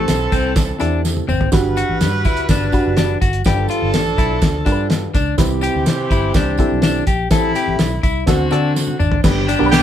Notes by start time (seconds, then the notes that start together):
Already playing: A2 E3 C4 E4 G4 A4
0.08 B1, snare, closed hi-hat, tambourine
0.32 C2 C4, kick, closed hi-hat, tambourine
0.56 kick, snare, closed hi-hat, tambourine
0.79 E2 C4 D4 E4 G4 A4, closed hi-hat, tambourine
1.05 snare, tambourine
1.17 high tom
1.29 G#1 C4, mid tom, tambourine
1.41 floor tom
1.52 G1 G2 G3 D4 F#4 G4 B4, kick, snare, closed hi-hat, tambourine
1.77 F#4, closed hi-hat, tambourine
1.89 A1
2.01 G2, snare, closed hi-hat, tambourine
2.25 D2 E4, kick, closed hi-hat, tambourine
2.37 closed hi-hat
2.49 G1 D4, kick, snare, closed hi-hat, tambourine
2.72 D4 F#4 G4 B4, kick, closed hi-hat, tambourine
2.86 F#1
2.97 D4, snare, closed hi-hat, tambourine
3.21 G1 F#4, kick, snare, closed hi-hat, tambourine
3.33 closed hi-hat
3.44 G1 G2 F3 D4 F4 G4 A4 B4, kick, snare, closed hi-hat, tambourine
3.68 F4, closed hi-hat, tambourine
3.82 G1
3.94 A1, snare, closed hi-hat, tambourine
4.18 B1 E4, kick, closed hi-hat, tambourine
4.42 D2, kick, snare, closed hi-hat, tambourine
4.65 G2 D4 F4 G4 A#4, kick, closed hi-hat, tambourine
4.72 B4
4.90 snare, closed hi-hat, tambourine
5.14 C#2 D4, kick, snare, closed hi-hat, tambourine
5.38 C2 C3 E3 C4 E4 G4 B4, kick, snare, closed hi-hat, tambourine
5.61 G4, closed hi-hat, tambourine
5.75 D2
5.86 C3, snare, closed hi-hat, tambourine
6.11 G1 E4, kick, closed hi-hat, tambourine
6.34 C2 D4, kick, snare, closed hi-hat, tambourine
6.57 C4 E4 G4 A4, kick, closed hi-hat, tambourine
6.72 B1
6.82 D4, snare, closed hi-hat, tambourine
7.07 A#1 G4, kick, closed hi-hat, tambourine
7.30 A1 A2 C3 A3 C4 E4 G4 A4, kick, snare, closed hi-hat, tambourine
7.55 G4, closed hi-hat, tambourine
7.68 A1
7.79 B1, snare, closed hi-hat, tambourine
8.03 C2 E4, kick, closed hi-hat, tambourine
8.26 D2 D3 C4 D4 F#4 A4, kick, snare, closed hi-hat, tambourine
8.51 D3 C4 D4 F#4 A4, closed hi-hat, tambourine
8.76 snare, tambourine
8.88 high tom
8.99 G#1 D4, mid tom, tambourine
9.12 floor tom
9.24 G1 G2 B3 D4 G4 B4 G5, kick, snare, crash, tambourine, muted conga
9.48 D4, closed hi-hat, tambourine
9.59 B1 B3 D4 G4 A#4
9.66 B4
9.72 D3 B3 G4, snare, closed hi-hat, tambourine, high conga